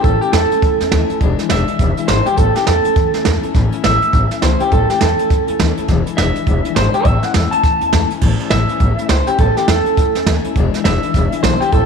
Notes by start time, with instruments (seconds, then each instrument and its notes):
0.02 upright bass A1, steel-string acoustic guitar A2 E3 A3 C#4 E4, clean electric guitar A4, kick, closed hi-hat
0.21 steel-string acoustic guitar A3 C#4 E4, clean electric guitar G4, closed hi-hat
0.33 upright bass E2, steel-string acoustic guitar A2 E3 A3 C#4 E4, clean electric guitar A4, snare, closed hi-hat
0.51 steel-string acoustic guitar A3 C#4 E4, closed hi-hat
0.62 upright bass F#2, steel-string acoustic guitar E3 A3 C#4 E4, kick, snare, closed hi-hat
0.80 upright bass E2, steel-string acoustic guitar A3 C#4 E4, snare, closed hi-hat
0.92 upright bass D#2, steel-string acoustic guitar A2 E3 A3 C#4 E4, kick, snare, closed hi-hat
1.10 steel-string acoustic guitar A3 C#4 E4, muted upright bass stroke, closed hi-hat
1.21 upright bass E1, steel-string acoustic guitar E2 B2 E3 G#3 D4 E4, kick, closed hi-hat
1.39 steel-string acoustic guitar E3 G#3 D4 E4, snare, closed hi-hat
1.50 upright bass E1, steel-string acoustic guitar E2 B2 E3 G#3 D4 E4, clean electric guitar E5, snare, closed hi-hat
1.68 steel-string acoustic guitar E3 G#3 D4 E4, muted upright bass stroke, closed hi-hat
1.79 upright bass E1, steel-string acoustic guitar E3 G#3 D4 E4, kick, snare, closed hi-hat
1.97 steel-string acoustic guitar E3 G#3 D4 E4, closed hi-hat
2.08 upright bass G#1, steel-string acoustic guitar E2 B2 E3 G#3 D4 E4, clean electric guitar C5, snare, closed hi-hat
2.26 steel-string acoustic guitar E3 G#3 D4 E4, clean electric guitar G4, muted upright bass stroke, closed hi-hat
2.37 upright bass A1, steel-string acoustic guitar A2 E3 A3 C#4 E4, clean electric guitar A4, kick, closed hi-hat
2.56 steel-string acoustic guitar A3 C#4 E4, clean electric guitar G4, snare, closed hi-hat
2.66 upright bass E2, steel-string acoustic guitar A2 E3 A3 C#4 E4, clean electric guitar A4, snare, closed hi-hat
2.84 steel-string acoustic guitar A3 C#4 E4, muted upright bass stroke, closed hi-hat
2.96 upright bass F#2, steel-string acoustic guitar E3 A3 C#4 E4, kick, snare, closed hi-hat
3.13 upright bass E2, steel-string acoustic guitar A3 C#4 E4, snare, closed hi-hat
3.24 upright bass E2, steel-string acoustic guitar A2 E3 A3 C#4 E4, kick, snare, closed hi-hat
3.42 steel-string acoustic guitar A3 C#4 E4, muted upright bass stroke, closed hi-hat
3.54 upright bass A1, steel-string acoustic guitar A2 E3 A3 C#4 E4, kick, snare, closed hi-hat
3.72 steel-string acoustic guitar A3 C#4 E4, muted upright bass stroke, closed hi-hat
3.84 upright bass A1, steel-string acoustic guitar A2 E3 A3 C#4 E4, clean electric guitar E5, snare, closed hi-hat
4.02 steel-string acoustic guitar A3 C#4 E4, muted upright bass stroke, closed hi-hat
4.12 upright bass A1, steel-string acoustic guitar E3 A3 C#4 E4, kick, snare, closed hi-hat
4.31 steel-string acoustic guitar A3 C#4 E4, muted upright bass stroke, snare, closed hi-hat
4.42 upright bass C#2, steel-string acoustic guitar A2 E3 A3 C#4 E4, clean electric guitar C5, snare, closed hi-hat
4.60 steel-string acoustic guitar A3 C#4 E4, clean electric guitar G4, muted upright bass stroke, closed hi-hat
4.72 upright bass A1, steel-string acoustic guitar A2 E3 A3 C#4 E4, clean electric guitar A4, kick, closed hi-hat
4.90 steel-string acoustic guitar A3 C#4 E4, clean electric guitar G4, snare, closed hi-hat
5.01 upright bass E2, steel-string acoustic guitar A2 E3 A3 C#4 E4, clean electric guitar A4, snare, closed hi-hat
5.19 steel-string acoustic guitar A3 C#4 E4, closed hi-hat
5.29 upright bass F#2, steel-string acoustic guitar E3 A3 C#4 E4, kick, snare, closed hi-hat
5.47 upright bass E2, steel-string acoustic guitar A3 C#4 E4, closed hi-hat
5.59 upright bass D#2, steel-string acoustic guitar A2 E3 A3 C#4 E4, kick, snare, closed hi-hat
5.77 steel-string acoustic guitar A3 C#4 E4, muted upright bass stroke, closed hi-hat
5.88 upright bass E1, steel-string acoustic guitar E2 B2 E3 G#3 D4 E4, kick, snare, closed hi-hat
6.06 steel-string acoustic guitar E3 G#3 D4 E4, muted upright bass stroke, closed hi-hat
6.17 upright bass E1, steel-string acoustic guitar E2 B2 E3 G#3 D4 E4, clean electric guitar E5, snare, closed hi-hat
6.36 steel-string acoustic guitar E3 G#3 D4 E4, muted upright bass stroke, closed hi-hat
6.47 upright bass E1, steel-string acoustic guitar E3 G#3 D4 E4, kick, closed hi-hat
6.65 steel-string acoustic guitar E3 G#3 D4 E4, muted upright bass stroke, closed hi-hat
6.76 upright bass G#1, steel-string acoustic guitar E2 B2 E3 G#3 D4 E4, clean electric guitar C5, snare, closed hi-hat
6.94 steel-string acoustic guitar E3 G#3 D4 E4, clean electric guitar G4, muted upright bass stroke, closed hi-hat
7.05 upright bass A1, steel-string acoustic guitar A2 E3 A3 C#4 E4, clean electric guitar E5, kick, closed hi-hat
7.23 steel-string acoustic guitar A3 C#4 E4, clean electric guitar F#5, muted upright bass stroke, snare, closed hi-hat
7.33 upright bass E2, steel-string acoustic guitar A2 E3 A3 C#4 E4, clean electric guitar E5, snare, closed hi-hat
7.51 steel-string acoustic guitar A3 C#4 E4, clean electric guitar A5, muted upright bass stroke, closed hi-hat
7.63 upright bass F#2, steel-string acoustic guitar E3 A3 C#4 E4, kick, snare, closed hi-hat
7.81 upright bass E2, steel-string acoustic guitar A3 C#4 E4, closed hi-hat
7.93 upright bass E2, steel-string acoustic guitar A2 E3 A3 C#4 E4, kick, snare, closed hi-hat
8.11 steel-string acoustic guitar A3 C#4 E4, muted upright bass stroke, closed hi-hat
8.21 upright bass A1, steel-string acoustic guitar A2 E3 A3 C#4 E4, kick, snare, crash
8.39 steel-string acoustic guitar A3 C#4 E4, muted upright bass stroke, closed hi-hat
8.50 upright bass A1, steel-string acoustic guitar A2 E3 A3 C#4 E4, clean electric guitar E5, snare, closed hi-hat
8.69 steel-string acoustic guitar A3 C#4 E4, closed hi-hat
8.80 upright bass A1, steel-string acoustic guitar E3 A3 C#4 E4, kick, closed hi-hat
8.98 steel-string acoustic guitar A3 C#4 E4, muted upright bass stroke, closed hi-hat
9.09 upright bass C#2, steel-string acoustic guitar A2 E3 A3 C#4 E4, clean electric guitar C5, snare, closed hi-hat
9.27 steel-string acoustic guitar A3 C#4 E4, clean electric guitar G4, muted upright bass stroke, closed hi-hat
9.39 upright bass A1, steel-string acoustic guitar A2 E3 A3 C#4 E4, clean electric guitar A4, kick, closed hi-hat
9.56 steel-string acoustic guitar A3 C#4 E4, clean electric guitar G4, muted upright bass stroke, snare, closed hi-hat
9.68 upright bass E2, steel-string acoustic guitar A2 E3 A3 C#4 E4, clean electric guitar A4, snare, closed hi-hat
9.86 steel-string acoustic guitar A3 C#4 E4, muted upright bass stroke, closed hi-hat
9.97 upright bass F#2, steel-string acoustic guitar E3 A3 C#4 E4, kick, snare, closed hi-hat
10.15 upright bass E2, steel-string acoustic guitar A3 C#4 E4, snare, closed hi-hat
10.27 upright bass D#2, steel-string acoustic guitar A2 E3 A3 C#4 E4, kick, snare, closed hi-hat
10.44 steel-string acoustic guitar A3 C#4 E4, muted upright bass stroke, closed hi-hat
10.55 upright bass E1, steel-string acoustic guitar E2 B2 E3 G#3 D4 E4, kick, closed hi-hat
10.74 steel-string acoustic guitar E3 G#3 D4 E4, snare, closed hi-hat
10.84 upright bass E1, steel-string acoustic guitar E2 B2 E3 G#3 D4 E4, clean electric guitar E5, snare, closed hi-hat
11.03 steel-string acoustic guitar E3 G#3 D4 E4, muted upright bass stroke, closed hi-hat
11.14 upright bass E1, steel-string acoustic guitar E3 G#3 D4 E4, kick, snare, closed hi-hat
11.32 steel-string acoustic guitar E3 G#3 D4 E4, muted upright bass stroke, closed hi-hat
11.43 upright bass B1, steel-string acoustic guitar E2 B2 E3 G#3 D4 E4, clean electric guitar C5, snare, closed hi-hat
11.60 steel-string acoustic guitar E3 G#3 D4 E4, clean electric guitar G4, muted upright bass stroke, closed hi-hat
11.72 upright bass A1, steel-string acoustic guitar A2 E3 A3 C#4 E4, clean electric guitar A4, kick, closed hi-hat